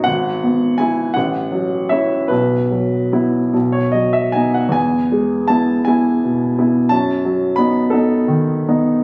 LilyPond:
<<
  \new Staff \with { instrumentName = "Grand piano" } { \time 12/8 \key e \major \tempo 4. = 53 fis''4 gis''8 fis''4 e''8 b'4.~ b'16 cis''16 dis''16 e''16 gis''16 fis''16 | gis''4 a''8 gis''4. a''4 b''8 a'4. | }
  \new Staff \with { instrumentName = "Grand piano" } { \time 12/8 \key e \major gis,,8 b8 e'8 a,,8 fis8 <cis' e'>8 b,,8 fis8 <b e'>8 b,,8 fis8 <b dis'>8 | e,8 gis8 <b e'>8 <b e'>8 b,8 <b e'>8 fis,8 fis8 <b dis'>8 <b dis'>8 dis8 <b dis'>8 | }
>>